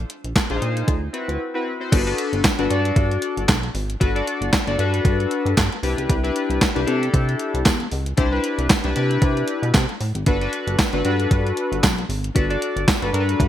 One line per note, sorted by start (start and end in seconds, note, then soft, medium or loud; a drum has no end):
0.10 closed hi-hat medium
0.24 0.34 A#1 medium
0.24 closed hi-hat soft
0.36 kick loud
0.36 snare loud
0.36 clap medium
0.36 closed hi-hat medium
0.36 tambourine medium
0.50 0.60 A#1 loud
0.50 0.56 D4 medium
0.50 0.88 F4 medium
0.50 0.88 G#4 medium
0.50 0.88 C5 medium
0.50 closed hi-hat soft
0.56 0.91 D#4 medium
0.62 0.83 A#2 loud
0.62 closed hi-hat medium
0.77 closed hi-hat medium
0.88 1.09 D2 loud
0.88 kick loud
0.88 closed hi-hat medium
1.13 1.40 C4 medium
1.13 1.41 E4 medium
1.13 1.41 F#4 medium
1.13 1.41 B4 medium
1.13 closed hi-hat medium
1.28 1.38 D2 medium
1.28 closed hi-hat soft
1.54 1.71 C4 medium
1.54 1.72 E4 medium
1.54 1.72 F#4 medium
1.54 1.72 B4 loud
1.80 1.92 C4 medium
1.80 1.92 E4 medium
1.80 1.91 F#4 medium
1.80 1.92 C5 medium
1.92 2.14 G1 loud
1.92 2.02 D4 medium
1.92 2.02 F#4 medium
1.92 2.02 A4 medium
1.92 2.02 B4 loud
1.92 kick loud
1.92 closed hi-hat loud
1.92 crash loud
2.06 2.41 D4 medium
2.06 2.41 F#4 medium
2.06 2.41 A4 medium
2.06 2.42 B4 loud
2.06 closed hi-hat soft
2.18 closed hi-hat medium
2.33 2.42 G1 loud
2.33 closed hi-hat medium
2.44 kick loud
2.44 snare loud
2.44 clap medium
2.44 closed hi-hat medium
2.44 tambourine medium
2.59 2.68 G1 loud
2.59 2.67 D4 loud
2.59 2.67 F#4 medium
2.59 2.67 A4 medium
2.59 2.67 B4 loud
2.59 closed hi-hat soft
2.69 2.92 G2 loud
2.69 3.42 D4 loud
2.69 3.42 F#4 medium
2.69 3.43 A4 loud
2.69 3.43 D5 loud
2.69 closed hi-hat medium
2.85 closed hi-hat medium
2.96 3.18 G2 medium
2.96 kick loud
2.96 closed hi-hat medium
3.11 closed hi-hat soft
3.22 closed hi-hat medium
3.37 3.47 G1 loud
3.37 closed hi-hat soft
3.49 3.70 B1 medium
3.49 kick loud
3.49 snare loud
3.49 clap loud
3.49 closed hi-hat medium
3.49 tambourine loud
3.63 closed hi-hat soft
3.75 3.96 G#1 loud
3.75 open hi-hat medium
3.90 closed hi-hat medium
4.00 4.22 G1 loud
4.00 4.10 D4 medium
4.00 4.10 F#4 medium
4.00 4.11 A4 medium
4.00 4.11 B4 loud
4.00 kick loud
4.00 closed hi-hat medium
4.15 4.50 D4 medium
4.15 4.50 F#4 medium
4.15 4.50 A4 medium
4.15 4.50 D5 loud
4.15 closed hi-hat soft
4.27 closed hi-hat medium
4.41 4.51 G1 loud
4.41 closed hi-hat medium
4.53 kick loud
4.53 snare loud
4.53 clap medium
4.53 closed hi-hat loud
4.53 tambourine medium
4.67 4.77 G1 medium
4.67 4.75 D4 medium
4.67 4.75 F#4 medium
4.67 4.76 A4 medium
4.67 4.76 D5 loud
4.67 closed hi-hat soft
4.79 5.00 G2 loud
4.79 5.51 D4 loud
4.79 5.51 F#4 medium
4.79 5.52 A4 loud
4.79 5.52 B4 loud
4.79 closed hi-hat medium
4.94 closed hi-hat medium
5.05 5.27 G2 loud
5.05 kick loud
5.05 closed hi-hat medium
5.20 closed hi-hat soft
5.31 closed hi-hat medium
5.46 5.55 G2 medium
5.46 closed hi-hat soft
5.57 5.69 G2 loud
5.57 kick loud
5.57 snare loud
5.57 clap loud
5.57 closed hi-hat medium
5.57 tambourine loud
5.72 closed hi-hat soft
5.83 5.95 C2 loud
5.83 6.15 D4 medium
5.83 6.15 E4 medium
5.83 6.15 G4 medium
5.83 6.16 B4 medium
5.83 open hi-hat medium
5.98 6.07 C#2 medium
5.98 closed hi-hat medium
6.09 6.31 C2 loud
6.09 kick loud
6.09 closed hi-hat loud
6.23 6.58 D4 medium
6.23 6.59 E4 medium
6.23 6.59 G4 medium
6.23 6.59 B4 loud
6.23 closed hi-hat soft
6.36 closed hi-hat medium
6.50 6.59 C2 loud
6.50 closed hi-hat medium
6.61 kick loud
6.61 snare loud
6.61 clap medium
6.61 closed hi-hat loud
6.61 tambourine medium
6.75 6.86 C2 loud
6.75 6.84 D4 loud
6.75 6.84 E4 medium
6.75 6.84 G4 medium
6.75 6.84 B4 loud
6.75 closed hi-hat soft
6.86 7.09 C3 loud
6.86 7.59 D4 loud
6.86 7.59 E4 medium
6.86 7.60 G4 loud
6.86 7.60 A4 loud
6.86 closed hi-hat medium
7.03 closed hi-hat medium
7.14 7.35 C3 loud
7.14 kick loud
7.14 closed hi-hat medium
7.29 closed hi-hat soft
7.39 closed hi-hat medium
7.54 7.64 C2 loud
7.54 closed hi-hat medium
7.65 7.87 E2 loud
7.65 kick loud
7.65 snare loud
7.65 clap medium
7.65 closed hi-hat medium
7.65 tambourine medium
7.80 closed hi-hat soft
7.91 8.13 C#2 loud
7.91 open hi-hat medium
8.06 closed hi-hat medium
8.17 8.40 C2 loud
8.17 8.28 D4 loud
8.17 8.28 E4 medium
8.17 8.28 G4 medium
8.17 8.28 C5 loud
8.17 kick loud
8.17 closed hi-hat medium
8.31 8.67 D4 loud
8.31 8.67 E4 medium
8.31 8.67 G4 medium
8.31 8.67 B4 loud
8.44 closed hi-hat medium
8.58 8.68 C2 loud
8.58 closed hi-hat medium
8.69 kick loud
8.69 snare loud
8.69 clap medium
8.69 closed hi-hat loud
8.69 tambourine medium
8.84 8.94 C2 loud
8.84 8.92 D4 medium
8.84 8.92 E4 medium
8.84 8.93 G4 medium
8.84 8.93 B4 loud
8.84 closed hi-hat soft
8.95 9.18 C3 loud
8.95 9.68 D4 loud
8.95 9.69 E4 loud
8.95 9.69 G4 medium
8.95 9.69 B4 loud
8.95 closed hi-hat medium
9.11 closed hi-hat medium
9.22 9.44 C3 loud
9.22 kick loud
9.22 closed hi-hat medium
9.37 closed hi-hat soft
9.48 closed hi-hat medium
9.62 9.72 B2 medium
9.62 closed hi-hat soft
9.74 9.87 C3 loud
9.74 kick loud
9.74 snare loud
9.74 clap medium
9.74 closed hi-hat medium
9.74 tambourine medium
9.89 closed hi-hat soft
10.01 10.13 A2 medium
10.01 open hi-hat medium
10.15 10.25 G#1 medium
10.15 closed hi-hat medium
10.26 10.48 G1 loud
10.26 10.37 D4 medium
10.26 10.37 F#4 medium
10.26 10.37 A4 medium
10.26 10.37 B4 loud
10.26 kick loud
10.26 closed hi-hat medium
10.41 10.76 D4 medium
10.41 10.76 F#4 medium
10.41 10.76 A4 medium
10.41 10.76 B4 loud
10.41 closed hi-hat soft
10.53 closed hi-hat medium
10.67 10.77 G1 loud
10.67 closed hi-hat medium
10.79 kick loud
10.79 snare loud
10.79 clap medium
10.79 closed hi-hat loud
10.79 tambourine medium
10.93 11.03 G1 loud
10.93 11.01 D4 medium
10.93 11.01 F#4 medium
10.93 11.02 A4 medium
10.93 11.02 B4 loud
10.93 closed hi-hat soft
11.05 11.27 G2 loud
11.05 11.77 D4 loud
11.05 11.77 F#4 loud
11.05 11.78 A4 medium
11.05 11.78 B4 loud
11.05 closed hi-hat medium
11.20 closed hi-hat medium
11.31 11.53 G2 loud
11.31 kick loud
11.31 closed hi-hat medium
11.47 closed hi-hat soft
11.57 closed hi-hat medium
11.72 11.81 G1 loud
11.72 closed hi-hat medium
11.83 12.05 B1 medium
11.83 kick loud
11.83 snare loud
11.83 clap medium
11.83 closed hi-hat medium
11.83 tambourine loud
11.98 closed hi-hat soft
12.09 12.31 G#1 medium
12.09 open hi-hat medium
12.24 closed hi-hat medium
12.35 12.57 G1 loud
12.35 12.45 D4 loud
12.35 12.45 F#4 medium
12.35 12.45 A4 medium
12.35 12.46 B4 loud
12.35 kick loud
12.35 closed hi-hat loud
12.49 12.84 D4 loud
12.49 12.85 F#4 medium
12.49 12.85 A4 medium
12.49 12.85 D5 loud
12.49 closed hi-hat soft
12.62 closed hi-hat medium
12.76 12.86 G1 medium
12.76 closed hi-hat medium
12.88 kick loud
12.88 snare loud
12.88 clap medium
12.88 closed hi-hat loud
12.88 tambourine medium
13.02 13.12 G1 loud
13.02 13.10 D4 medium
13.02 13.10 F#4 medium
13.02 13.10 A4 medium
13.02 13.10 B4 loud
13.02 closed hi-hat soft
13.13 13.35 G2 loud
13.13 13.48 D4 loud
13.13 13.48 F#4 medium
13.13 13.48 A4 medium
13.13 13.21 A#4 loud
13.13 closed hi-hat medium
13.20 13.48 B4 loud
13.29 closed hi-hat medium
13.40 13.48 G2 loud
13.40 kick loud
13.40 closed hi-hat medium